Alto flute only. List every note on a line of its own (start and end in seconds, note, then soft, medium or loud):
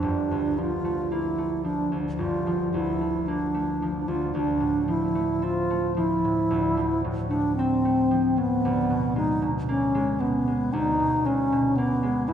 0.00 0.60 D4 soft
0.58 1.14 F4 medium
1.12 1.64 E4 medium
1.64 1.99 D4 medium
2.18 2.69 F4 medium
2.74 3.29 E4 medium
3.27 4.10 D4 medium
4.08 4.34 F4 medium
4.35 4.87 D4 medium
4.89 5.45 E4 medium
5.43 5.95 F4 medium
5.96 7.01 E4 medium
7.29 7.55 D4 medium
7.56 8.39 C4 medium
8.38 9.16 B3 medium
9.17 9.49 D#4 medium
9.69 10.22 C#4 medium
10.20 10.74 B3 medium
10.73 11.27 D#4 medium
11.26 11.78 C#4 medium
11.77 12.30 B3 medium
12.28 12.33 E4 medium